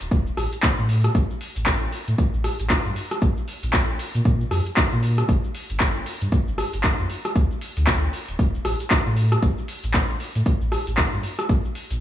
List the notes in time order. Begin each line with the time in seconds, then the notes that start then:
0.01 D1, closed hi-hat, shaker
0.11 D1, kick, closed hi-hat, shaker
0.27 shaker
0.37 A1, cross-stick, open hi-hat
0.53 closed hi-hat, shaker
0.63 kick, clap, closed hi-hat, shaker
0.78 A2, shaker
0.89 open hi-hat
1.04 cross-stick, closed hi-hat, shaker
1.15 A1, kick, closed hi-hat, shaker
1.30 shaker
1.41 open hi-hat
1.56 A1, closed hi-hat, shaker
1.66 kick, clap, closed hi-hat, shaker
1.82 shaker
1.92 open hi-hat
2.08 A2, closed hi-hat, shaker
2.18 kick, closed hi-hat, shaker
2.34 A1, shaker
2.44 cross-stick, open hi-hat
2.60 A1, closed hi-hat, shaker
2.70 kick, clap, closed hi-hat, shaker
2.85 G2, shaker
2.96 open hi-hat
3.11 cross-stick, closed hi-hat, shaker
3.22 A#1, kick, closed hi-hat, shaker
3.37 shaker
3.48 open hi-hat
3.63 A#1, closed hi-hat, shaker
3.73 kick, clap, closed hi-hat, shaker
3.89 shaker
3.99 open hi-hat
4.15 A#2, closed hi-hat, shaker
4.25 A#2, kick, closed hi-hat, shaker
4.41 shaker
4.51 F2, cross-stick, open hi-hat
4.66 closed hi-hat, shaker
4.77 kick, clap, closed hi-hat, shaker
4.92 A#2, shaker
5.03 open hi-hat
5.18 cross-stick, closed hi-hat, shaker
5.29 G1, kick, closed hi-hat, shaker
5.44 shaker
5.55 open hi-hat
5.70 G1, closed hi-hat, shaker
5.80 kick, clap, closed hi-hat, shaker
5.96 shaker
6.06 open hi-hat
6.22 G2, closed hi-hat, shaker
6.32 kick, closed hi-hat, shaker
6.48 G1, shaker
6.58 cross-stick, open hi-hat
6.73 G1, closed hi-hat, shaker
6.83 kick, clap, closed hi-hat, shaker
6.99 F2, shaker
7.10 open hi-hat
7.25 cross-stick, closed hi-hat, shaker
7.36 D2, kick, closed hi-hat, shaker
7.51 shaker
7.61 open hi-hat
7.77 D2, closed hi-hat, shaker
7.87 kick, clap, closed hi-hat, shaker
8.03 shaker
8.13 open hi-hat
8.29 D1, closed hi-hat, shaker
8.39 D1, kick, closed hi-hat, shaker
8.54 shaker
8.65 A1, cross-stick, open hi-hat
8.80 closed hi-hat, shaker
8.90 kick, clap, closed hi-hat, shaker
9.06 A2, shaker
9.17 open hi-hat
9.32 cross-stick, closed hi-hat, shaker
9.42 A1, kick, closed hi-hat, shaker
9.58 shaker
9.68 open hi-hat
9.84 A1, closed hi-hat, shaker
9.94 kick, clap, closed hi-hat, shaker
10.10 shaker
10.20 open hi-hat
10.35 A2, closed hi-hat, shaker
10.46 kick, closed hi-hat, shaker
10.61 A1, shaker
10.72 cross-stick, open hi-hat
10.87 A1, closed hi-hat, shaker
10.97 kick, clap, closed hi-hat, shaker
11.13 G2, shaker
11.23 open hi-hat
11.39 cross-stick, closed hi-hat, shaker
11.49 A#1, kick, closed hi-hat, shaker
11.65 shaker
11.75 open hi-hat
11.90 A#1, closed hi-hat, shaker